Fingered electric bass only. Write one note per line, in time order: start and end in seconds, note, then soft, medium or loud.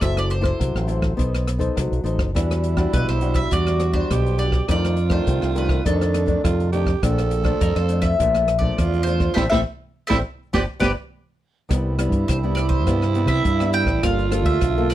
0.02 0.51 F#1 loud
0.61 0.73 C2 medium
0.75 1.12 A1 medium
1.18 1.68 B1 medium
1.77 1.90 C2 medium
1.92 2.03 B1 medium
2.04 2.16 A1 medium
2.16 2.31 F#1 medium
2.36 2.85 E2 medium
2.93 3.06 B1 medium
3.09 3.46 B1 medium
3.52 4.02 E2 medium
4.11 4.60 B1 medium
4.69 5.19 F2 loud
5.27 5.40 C2 loud
5.43 5.80 C2 medium
5.85 6.35 F2 medium
6.45 6.94 F2 medium
7.03 7.52 A#1 loud
7.61 7.74 F2 medium
7.76 8.13 F2 medium
8.20 8.69 A#1 medium
8.79 9.28 E2 medium
9.37 9.48 A1 medium
9.53 9.63 A1 medium
10.12 10.21 A1 medium
10.54 10.65 G1 medium
10.81 10.92 G1 medium
11.70 12.08 C2 loud
12.10 12.24 G2 medium
12.29 12.87 C2 medium
12.87 13.24 G2 medium
13.26 13.40 C3 medium
13.45 13.82 G2 loud
13.84 13.99 A1 medium
14.03 14.41 G1 loud
14.42 14.57 D2 medium
14.62 14.94 B1 loud